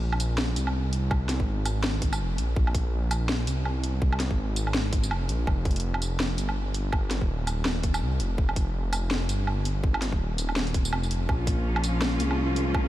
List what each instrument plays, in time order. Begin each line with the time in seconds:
Already playing: detuned saw bass A#1
0.12 low woodblock
0.20 closed hi-hat, tambourine
0.38 snare
0.56 detuned saw bass C2, closed hi-hat, tambourine
0.67 low woodblock
0.93 closed hi-hat
1.11 kick, low woodblock
1.29 snare, closed hi-hat
1.40 detuned saw bass G#1, kick
1.66 closed hi-hat, tambourine, low woodblock
1.84 snare
2.02 kick, closed hi-hat
2.13 tambourine, low woodblock
2.20 detuned saw bass F1
2.38 detuned saw bass A#1, closed hi-hat
2.56 detuned saw bass A#1, kick
2.67 low woodblock
2.75 kick, closed hi-hat
3.11 closed hi-hat, tambourine, low woodblock
3.29 snare
3.47 detuned saw bass C2, closed hi-hat, tambourine
3.65 low woodblock
3.84 closed hi-hat
4.02 kick
4.13 low woodblock
4.20 snare, closed hi-hat
4.31 detuned saw bass G#1, kick
4.56 closed hi-hat, tambourine
4.67 low woodblock
4.74 snare
4.93 kick, closed hi-hat
5.03 tambourine
5.11 detuned saw bass F1, low woodblock
5.29 detuned saw bass A#1, closed hi-hat
5.47 detuned saw bass F1, kick, low woodblock
5.65 kick, closed hi-hat
5.71 closed hi-hat
5.76 closed hi-hat
5.80 closed hi-hat
5.94 low woodblock
6.02 closed hi-hat, tambourine
6.20 snare
6.38 detuned saw bass G1, closed hi-hat, tambourine
6.49 low woodblock
6.74 closed hi-hat
6.92 kick, low woodblock
7.11 snare, closed hi-hat
7.22 detuned saw bass D#1, kick
7.47 closed hi-hat, tambourine, low woodblock
7.65 snare
7.83 kick, closed hi-hat
7.94 tambourine, low woodblock
8.02 detuned saw bass C2
8.20 detuned saw bass F1, closed hi-hat
8.38 detuned saw bass F1, kick
8.49 low woodblock
8.56 kick, closed hi-hat
8.93 closed hi-hat, tambourine, low woodblock
9.11 snare
9.29 detuned saw bass G1, closed hi-hat, tambourine
9.47 low woodblock
9.65 closed hi-hat
9.84 kick
9.94 low woodblock
10.02 snare, closed hi-hat
10.12 detuned saw bass D#1, kick
10.38 closed hi-hat, tambourine
10.49 low woodblock
10.56 snare
10.67 closed hi-hat
10.74 kick, closed hi-hat
10.85 tambourine
10.93 detuned saw bass F1, low woodblock
11.03 tambourine
11.11 detuned saw bass F1, closed hi-hat
11.29 detuned saw bass A#1, cello section F3 A#3 C#4 F4, synth texture G#3 G#4, kick, low woodblock
11.47 kick, closed hi-hat
11.76 low woodblock
11.84 closed hi-hat, tambourine
12.02 snare
12.20 detuned saw bass C2, closed hi-hat, tambourine
12.31 low woodblock
12.56 closed hi-hat
12.74 kick, low woodblock